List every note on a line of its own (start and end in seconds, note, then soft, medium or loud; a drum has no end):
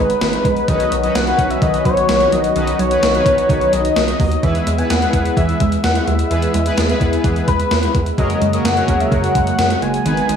0.00 0.14 G#1 medium
0.00 0.12 G#3 medium
0.00 0.65 G#3 medium
0.00 8.14 B3 medium
0.00 0.65 D#4 medium
0.00 0.70 B4 loud
0.10 closed hi-hat medium
0.21 0.38 G#1 loud
0.21 snare loud
0.21 closed hi-hat medium
0.33 closed hi-hat medium
0.45 0.61 A#1 medium
0.45 0.59 G#3 medium
0.45 kick loud
0.45 closed hi-hat medium
0.57 closed hi-hat soft
0.68 0.85 B1 loud
0.68 0.83 D#3 medium
0.68 4.39 D#3 medium
0.68 4.39 F#3 medium
0.68 2.54 C#4 medium
0.68 0.91 C#4 medium
0.68 0.91 D#4 medium
0.68 4.39 F#4 medium
0.68 0.91 F#4 medium
0.68 0.91 B4 medium
0.68 1.03 D#5 loud
0.68 kick loud
0.68 closed hi-hat medium
0.80 closed hi-hat medium
0.92 1.08 B1 loud
0.92 1.06 F#3 medium
0.92 closed hi-hat medium
1.03 1.18 C#4 medium
1.03 1.18 D#4 medium
1.03 1.18 F#4 medium
1.03 1.18 B4 medium
1.03 1.16 D#5 medium
1.03 closed hi-hat medium
1.15 1.32 B1 medium
1.15 1.30 B3 medium
1.15 1.52 F#5 loud
1.15 snare loud
1.15 closed hi-hat medium
1.27 1.87 C#4 medium
1.27 1.87 D#4 medium
1.27 1.87 F#4 medium
1.27 1.87 B4 medium
1.27 closed hi-hat soft
1.38 1.55 B1 medium
1.38 1.53 C#4 medium
1.38 kick medium
1.38 closed hi-hat medium
1.50 1.63 E5 loud
1.50 closed hi-hat soft
1.62 1.78 B1 loud
1.62 1.77 D#3 medium
1.62 1.85 D#5 loud
1.62 kick loud
1.62 closed hi-hat medium
1.74 closed hi-hat medium
1.85 2.02 B1 medium
1.85 2.00 F#3 medium
1.85 2.34 C#5 loud
1.85 kick loud
1.85 closed hi-hat medium
1.97 closed hi-hat medium
2.09 2.25 B1 loud
2.09 snare loud
2.09 closed hi-hat medium
2.20 closed hi-hat medium
2.32 2.49 A#1 loud
2.32 2.47 F#3 medium
2.32 2.55 D#5 loud
2.32 closed hi-hat medium
2.44 closed hi-hat soft
2.56 2.72 B1 loud
2.56 2.70 D#3 loud
2.56 2.78 C#4 medium
2.56 4.41 D#4 medium
2.56 2.78 D#4 medium
2.56 2.78 F#4 medium
2.56 2.78 B4 medium
2.56 2.81 D#5 loud
2.56 closed hi-hat medium
2.67 closed hi-hat medium
2.79 2.96 B1 loud
2.79 2.94 F#3 medium
2.79 3.74 C#5 loud
2.79 closed hi-hat medium
2.91 3.06 C#4 medium
2.91 3.06 D#4 medium
2.91 3.06 F#4 medium
2.91 3.06 B4 medium
2.91 closed hi-hat medium
3.03 3.19 B1 loud
3.03 3.17 B3 medium
3.03 snare loud
3.03 closed hi-hat medium
3.14 3.74 C#4 medium
3.14 3.74 D#4 medium
3.14 3.74 F#4 medium
3.14 3.74 B4 medium
3.14 closed hi-hat soft
3.26 3.42 A#1 medium
3.26 3.41 C#4 medium
3.26 kick medium
3.26 closed hi-hat medium
3.38 closed hi-hat medium
3.49 3.66 B1 loud
3.49 3.64 D#3 medium
3.49 kick loud
3.49 closed hi-hat medium
3.61 closed hi-hat medium
3.73 3.89 B1 loud
3.73 3.87 F#3 medium
3.73 4.45 D#5 loud
3.73 closed hi-hat medium
3.85 closed hi-hat medium
3.96 4.13 B1 loud
3.96 snare loud
3.96 closed hi-hat medium
4.08 closed hi-hat medium
4.20 4.36 D#2 loud
4.20 4.34 F#3 medium
4.20 kick loud
4.20 open hi-hat medium
4.32 closed hi-hat soft
4.43 4.60 E2 loud
4.43 4.58 E3 loud
4.43 8.15 G#3 medium
4.43 4.66 B3 medium
4.43 4.66 E4 medium
4.43 8.15 E4 medium
4.43 4.66 G#4 medium
4.43 4.66 B4 medium
4.43 4.80 E5 loud
4.43 kick loud
4.43 closed hi-hat medium
4.55 closed hi-hat medium
4.67 4.83 E2 loud
4.67 4.81 G#3 medium
4.67 closed hi-hat medium
4.78 4.93 B3 medium
4.78 4.93 E4 medium
4.78 4.93 G#4 medium
4.78 4.93 B4 medium
4.78 4.92 G#5 loud
4.78 closed hi-hat medium
4.90 5.06 E2 medium
4.90 5.05 B3 medium
4.90 5.36 F#5 loud
4.90 snare loud
4.90 closed hi-hat medium
5.02 5.62 B3 medium
5.02 5.62 E4 medium
5.02 5.62 G#4 medium
5.02 5.62 B4 medium
5.02 closed hi-hat soft
5.13 5.30 E2 medium
5.13 5.28 E4 medium
5.13 kick medium
5.13 closed hi-hat medium
5.25 closed hi-hat soft
5.37 5.53 E2 loud
5.37 5.52 E3 medium
5.37 5.80 E5 loud
5.37 kick loud
5.37 closed hi-hat medium
5.49 closed hi-hat medium
5.60 5.77 E2 medium
5.60 5.75 G#3 medium
5.60 kick loud
5.60 closed hi-hat medium
5.72 closed hi-hat medium
5.84 6.00 E2 loud
5.84 6.09 F#5 loud
5.84 snare loud
5.84 closed hi-hat medium
5.95 closed hi-hat medium
6.07 6.24 D#2 medium
6.07 6.22 G#3 medium
6.07 7.01 E5 loud
6.07 closed hi-hat medium
6.19 closed hi-hat soft
6.31 6.47 E2 loud
6.31 6.45 E3 loud
6.31 6.53 B3 medium
6.31 6.53 E4 medium
6.31 6.53 G#4 medium
6.31 6.53 B4 medium
6.31 closed hi-hat medium
6.42 closed hi-hat medium
6.54 6.71 E2 loud
6.54 6.69 G#3 medium
6.54 closed hi-hat medium
6.66 6.81 B3 medium
6.66 6.81 E4 medium
6.66 6.81 G#4 medium
6.66 6.81 B4 loud
6.66 closed hi-hat medium
6.77 6.94 E2 loud
6.77 6.92 B3 medium
6.77 snare loud
6.77 closed hi-hat medium
6.89 7.49 B3 medium
6.89 7.49 E4 medium
6.89 7.49 G#4 medium
6.89 7.49 B4 loud
6.89 closed hi-hat soft
7.01 7.17 E2 loud
7.01 7.16 E4 medium
7.01 kick medium
7.01 closed hi-hat medium
7.13 closed hi-hat medium
7.24 7.41 E2 loud
7.24 7.39 E3 medium
7.24 kick loud
7.24 closed hi-hat medium
7.36 closed hi-hat medium
7.48 7.64 E2 loud
7.48 7.62 G#3 medium
7.48 7.91 B4 loud
7.48 kick loud
7.48 closed hi-hat medium
7.60 closed hi-hat medium
7.71 7.88 E2 loud
7.71 snare loud
7.71 closed hi-hat medium
7.83 closed hi-hat medium
7.95 8.11 E2 medium
7.95 8.09 G#3 medium
7.95 kick loud
7.95 closed hi-hat medium
8.06 closed hi-hat soft
8.18 8.35 F#2 loud
8.18 10.04 C#3 medium
8.18 8.33 F#3 loud
8.18 10.04 F#3 medium
8.18 10.36 G#3 medium
8.18 10.04 A#3 medium
8.18 8.41 C#4 medium
8.18 8.41 F#4 medium
8.18 10.04 F#4 medium
8.18 8.41 G#4 medium
8.18 8.41 A#4 medium
8.18 8.51 D#5 medium
8.18 kick loud
8.18 closed hi-hat medium
8.30 closed hi-hat medium
8.42 8.58 F#2 loud
8.42 8.56 G#3 medium
8.42 closed hi-hat medium
8.53 8.68 C#4 medium
8.53 8.68 F#4 medium
8.53 8.68 G#4 medium
8.53 8.68 A#4 medium
8.53 8.59 D#5 medium
8.53 closed hi-hat medium
8.65 8.81 F#2 loud
8.65 8.80 A#3 medium
8.65 9.02 F#5 medium
8.65 snare loud
8.65 closed hi-hat medium
8.77 9.37 C#4 medium
8.77 9.37 F#4 medium
8.77 9.37 G#4 medium
8.77 9.37 A#4 medium
8.77 closed hi-hat soft
8.88 9.05 E2 medium
8.88 9.03 C#4 medium
8.88 kick medium
8.88 closed hi-hat medium
9.00 9.14 E5 medium
9.00 closed hi-hat soft
9.12 9.28 F#2 loud
9.12 9.27 F#3 medium
9.12 9.84 F#5 loud
9.12 kick loud
9.12 closed hi-hat medium
9.24 closed hi-hat medium
9.35 9.52 F#2 loud
9.35 9.50 G#3 medium
9.35 kick loud
9.35 closed hi-hat medium
9.47 closed hi-hat medium
9.59 9.75 F#2 loud
9.59 snare loud
9.59 closed hi-hat medium
9.70 closed hi-hat medium
9.82 9.99 F#1 medium
9.82 9.97 G#3 medium
9.82 10.36 G#5 loud
9.82 closed hi-hat medium
9.94 closed hi-hat soft
10.06 10.22 G#1 loud
10.06 10.20 D#3 medium
10.06 10.28 B3 medium
10.06 10.36 B3 medium
10.06 10.28 D#4 medium
10.06 10.36 D#4 medium
10.06 10.28 G#4 medium
10.06 10.28 B4 medium
10.06 closed hi-hat medium
10.17 closed hi-hat medium
10.29 10.36 G#1 loud
10.29 10.36 G#3 medium
10.29 closed hi-hat medium